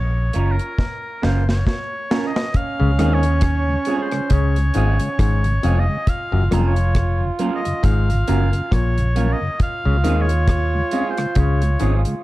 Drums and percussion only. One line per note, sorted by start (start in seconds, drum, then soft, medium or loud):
0.33 closed hi-hat medium
0.59 closed hi-hat soft
0.79 kick loud
0.79 snare soft
1.23 snare medium
1.49 snare medium
1.67 kick loud
1.67 snare medium
2.11 snare medium
2.36 snare medium
2.54 kick medium
2.54 closed hi-hat medium
2.99 cross-stick medium
2.99 closed hi-hat medium
3.23 closed hi-hat medium
3.41 kick loud
3.41 cross-stick loud
3.41 closed hi-hat medium
3.85 closed hi-hat medium
4.11 cross-stick medium
4.11 closed hi-hat medium
4.30 kick loud
4.30 closed hi-hat medium
4.56 closed hi-hat medium
4.74 closed hi-hat medium
5.00 closed hi-hat medium
5.19 kick loud
5.19 cross-stick loud
5.19 closed hi-hat loud
5.44 closed hi-hat medium
5.63 closed hi-hat medium
6.07 kick loud
6.07 closed hi-hat medium
6.52 cross-stick medium
6.52 closed hi-hat medium
6.76 closed hi-hat medium
6.95 kick loud
6.95 cross-stick loud
6.95 closed hi-hat medium
7.39 closed hi-hat medium
7.65 closed hi-hat medium
7.84 kick loud
7.84 closed hi-hat loud
8.10 closed hi-hat medium
8.28 closed hi-hat medium
8.53 closed hi-hat medium
8.72 kick loud
8.72 cross-stick loud
8.72 closed hi-hat loud
8.98 closed hi-hat medium
9.16 closed hi-hat medium
9.60 kick loud
9.60 closed hi-hat medium
10.05 closed hi-hat medium
10.29 closed hi-hat medium
10.48 kick loud
10.48 cross-stick loud
10.48 closed hi-hat loud
10.91 closed hi-hat medium
11.17 cross-stick medium
11.17 closed hi-hat medium
11.35 kick loud
11.35 closed hi-hat medium
11.62 closed hi-hat medium
11.80 closed hi-hat medium
12.05 closed hi-hat medium